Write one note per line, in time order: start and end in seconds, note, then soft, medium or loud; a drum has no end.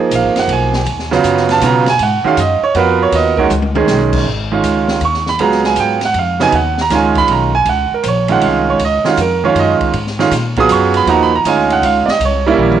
0.00 0.79 F3 medium
0.00 0.79 A#3 medium
0.00 0.79 D#4 medium
0.00 0.79 G#4 medium
0.11 0.23 A#1 medium
0.11 hi-hat pedal medium
0.11 ride medium
0.15 0.37 F5 medium
0.23 0.35 G#1 medium
0.36 0.47 F#1 medium
0.36 0.50 F#5 loud
0.36 snare soft
0.36 ride medium
0.48 0.85 B1 loud
0.48 ride medium
0.53 1.09 G#5 medium
0.73 snare medium
0.86 1.23 D#2 medium
0.86 ride medium
0.99 snare soft
1.11 1.59 C#3 medium
1.11 1.60 F#3 medium
1.11 1.60 B3 medium
1.11 1.60 F4 medium
1.11 snare soft
1.24 1.61 F#2 medium
1.24 hi-hat pedal medium
1.24 ride medium
1.37 snare soft
1.49 1.63 A5 loud
1.49 snare medium
1.49 ride medium
1.61 1.98 B2 loud
1.61 1.85 C#3 medium
1.61 1.85 F#3 medium
1.61 1.85 B3 medium
1.61 1.85 F4 medium
1.61 hi-hat pedal medium
1.61 ride medium
1.66 1.88 A#5 loud
1.86 2.01 G#5 loud
1.86 snare medium
1.86 ride medium
1.99 2.23 G#2 medium
1.99 2.26 F#5 medium
1.99 ride medium
2.24 2.36 D#3 medium
2.24 2.36 G#3 medium
2.24 2.37 C#4 medium
2.24 2.37 F#4 medium
2.24 2.39 F5 loud
2.24 muted upright bass stroke soft
2.37 2.60 F#2 medium
2.37 2.63 D#5 medium
2.37 hi-hat pedal medium
2.37 ride medium
2.62 2.75 C#5 medium
2.62 muted upright bass stroke soft
2.74 3.11 F2 loud
2.74 3.33 B3 medium
2.74 3.33 F4 medium
2.74 3.33 F#4 medium
2.74 3.34 A#4 medium
2.74 3.01 B4 medium
2.74 ride medium
3.02 3.14 C#5 medium
3.12 3.49 D#2 medium
3.12 3.38 D#5 medium
3.12 ride medium
3.37 3.50 D#3 medium
3.37 3.50 G#3 medium
3.37 3.50 C#4 medium
3.37 3.50 F#4 medium
3.37 3.45 A#4 medium
3.37 kick medium
3.50 3.87 C#2 medium
3.50 hi-hat pedal medium
3.50 high tom medium
3.62 high tom medium
3.75 4.24 D#3 medium
3.75 4.24 G#3 medium
3.75 4.24 C#4 medium
3.75 4.24 G#4 medium
3.75 high tom loud
3.87 4.25 B1 loud
3.87 snare medium
3.87 hi-hat pedal medium
4.13 kick medium
4.13 crash medium
4.25 4.62 G#1 medium
4.52 4.99 D#3 medium
4.52 5.00 G#3 medium
4.52 5.00 C#4 medium
4.52 5.00 F4 medium
4.62 5.00 C#2 medium
4.62 hi-hat pedal medium
4.62 ride medium
4.88 snare medium
5.01 5.38 D#2 medium
5.01 ride medium
5.05 5.28 C#6 medium
5.14 snare soft
5.26 5.41 B5 loud
5.26 snare soft
5.38 5.76 C#2 medium
5.38 5.97 F#3 medium
5.38 5.97 B3 medium
5.38 5.98 F4 medium
5.38 5.98 G#4 medium
5.38 5.65 A#5 medium
5.38 ride medium
5.52 snare soft
5.64 5.78 G#5 medium
5.64 snare soft
5.76 6.14 G#2 medium
5.76 hi-hat pedal medium
5.76 ride medium
5.80 6.03 G5 medium
6.01 snare soft
6.01 ride medium
6.05 6.16 F#5 medium
6.14 6.51 F2 medium
6.14 ride medium
6.19 6.41 F5 medium
6.40 6.52 C#3 medium
6.40 6.52 F#3 medium
6.40 6.52 B3 medium
6.40 6.52 D#4 medium
6.40 6.54 G#5 loud
6.40 snare medium
6.52 6.89 D#2 medium
6.52 6.78 F#5 medium
6.52 ride medium
6.78 6.92 A#5 medium
6.78 snare medium
6.90 7.27 C#2 medium
6.90 7.49 D#3 medium
6.90 7.49 G#3 medium
6.90 7.49 C#4 medium
6.90 7.49 F4 medium
6.90 snare soft
6.90 hi-hat pedal medium
6.90 ride medium
6.95 7.17 G#5 medium
7.15 7.29 B5 loud
7.15 kick medium
7.15 ride medium
7.28 7.65 B1 loud
7.28 ride medium
7.32 7.54 A#5 medium
7.55 7.67 G#5 loud
7.65 7.89 C#2 medium
7.65 7.92 F#5 medium
7.65 ride medium
7.91 8.05 A#4 medium
7.91 muted upright bass stroke soft
8.03 8.41 A#1 medium
8.03 8.06 C5 medium
8.03 hi-hat pedal medium
8.03 ride medium
8.08 8.30 C#5 medium
8.28 8.77 D#3 medium
8.28 8.77 G#3 medium
8.28 8.78 C#4 medium
8.28 8.78 F4 medium
8.28 8.43 F#5 loud
8.28 ride medium
8.41 8.79 C2 medium
8.41 ride medium
8.46 8.68 F5 medium
8.70 8.81 C#5 medium
8.79 9.03 C#2 medium
8.79 ride medium
8.85 9.07 D#5 medium
9.04 9.17 D#3 medium
9.04 9.17 G#3 medium
9.04 9.17 C#4 medium
9.04 9.17 F4 medium
9.04 muted upright bass stroke soft
9.04 snare medium
9.09 9.20 F#4 medium
9.17 9.54 F2 medium
9.17 hi-hat pedal medium
9.17 ride medium
9.21 9.44 A#4 medium
9.44 9.91 D#3 medium
9.44 9.92 G#3 medium
9.44 9.92 C#4 medium
9.44 9.92 F4 medium
9.44 9.56 C#5 medium
9.55 9.78 F#2 medium
9.55 ride medium
9.59 9.73 D#5 medium
9.80 muted upright bass stroke soft
9.80 kick medium
9.80 ride medium
9.93 10.30 G#2 medium
9.93 ride medium
10.07 snare soft
10.19 10.30 D#3 medium
10.19 10.31 G#3 medium
10.19 10.31 C#4 medium
10.19 10.31 F4 medium
10.19 snare soft
10.31 10.68 A#2 medium
10.31 snare soft
10.31 hi-hat pedal medium
10.31 ride medium
10.56 11.05 F#3 medium
10.56 11.05 B3 medium
10.56 11.05 F4 medium
10.56 11.06 G#4 medium
10.56 10.71 D#6 loud
10.56 kick medium
10.56 ride medium
10.69 11.05 F#2 medium
10.69 10.95 C#6 loud
10.69 hi-hat pedal medium
10.69 ride medium
10.94 11.08 B5 loud
10.94 ride medium
11.06 11.43 D#2 loud
11.06 11.30 F3 medium
11.06 11.30 A#3 medium
11.06 11.30 D#4 medium
11.06 11.30 F#4 medium
11.06 11.21 A#5 medium
11.06 ride medium
11.23 11.33 B5 loud
11.35 11.46 A#5 medium
11.44 11.81 D2 loud
11.44 12.04 G#3 medium
11.44 12.04 C#4 medium
11.44 12.03 D#4 medium
11.44 12.04 F4 medium
11.44 hi-hat pedal medium
11.44 ride medium
11.48 11.71 G#5 medium
11.70 11.84 F#5 loud
11.70 ride medium
11.82 12.06 C#2 loud
11.82 12.08 F5 medium
11.82 ride medium
12.06 12.07 D5 medium
12.06 muted upright bass stroke soft
12.06 snare medium
12.10 12.21 D#5 loud
12.20 12.57 C2 loud
12.20 ride medium
12.25 12.80 C#5 medium
12.46 12.80 G3 medium
12.46 12.80 A#3 medium
12.46 12.80 C#4 medium
12.46 12.80 E4 loud
12.58 12.80 A#1 medium
12.58 mid tom medium
12.72 mid tom medium